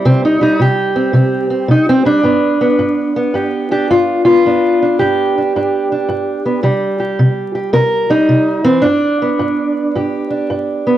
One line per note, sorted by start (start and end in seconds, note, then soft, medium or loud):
0.00 0.41 G3 soft
0.00 0.61 E4 soft
0.05 0.56 C3 medium
0.05 0.23 C4 medium
0.25 0.41 D#4 medium
0.41 2.05 G3 soft
0.41 0.60 D#4 medium
0.60 1.11 C3 medium
0.60 2.25 G4 medium
0.96 1.13 C4 soft
1.13 1.65 C3 medium
1.13 1.49 C4 soft
1.50 1.69 C4 soft
1.68 2.20 C3 medium
1.68 1.89 D#4 medium
1.89 2.06 C4 medium
2.05 2.24 G3 soft
2.05 3.70 D4 medium
2.23 2.75 G2 medium
2.23 2.61 B3 soft
2.61 3.16 B3 soft
2.79 3.30 G2 medium
3.16 4.25 B3 soft
3.34 3.85 G2 medium
3.34 3.71 G4 soft
3.71 4.43 D4 soft
3.71 3.90 G4 medium
3.91 4.41 G2 medium
3.91 4.24 F4 medium
4.25 4.43 B3 soft
4.25 4.99 F4 medium
4.46 4.96 G2 medium
4.46 6.44 B3 soft
4.46 4.81 D4 soft
4.82 5.36 D4 soft
4.99 5.51 G2 medium
4.99 6.63 G4 medium
5.38 5.55 D4 soft
5.56 6.06 G2 medium
5.56 5.91 D4 soft
5.92 6.63 D4 soft
6.09 6.60 G2 medium
6.46 6.62 B3 soft
6.63 7.15 C3 medium
6.63 8.09 G3 soft
6.63 6.99 G4 soft
7.00 7.55 G4 soft
7.19 7.70 C3 medium
7.55 7.73 G4 soft
7.73 8.25 C3 medium
7.73 8.10 A#4 medium
8.10 8.64 G3 soft
8.10 8.66 D#4 medium
8.29 8.80 C3 medium
8.65 8.82 E3 soft
8.65 8.84 C4 medium
8.82 9.36 G2 medium
8.82 10.29 D4 medium
9.22 10.86 B3 soft
9.39 9.91 G2 medium
9.95 10.46 G2 medium
9.95 10.98 G4 soft
10.30 10.98 D4 soft
10.50 10.98 G2 medium
10.87 10.98 B3 soft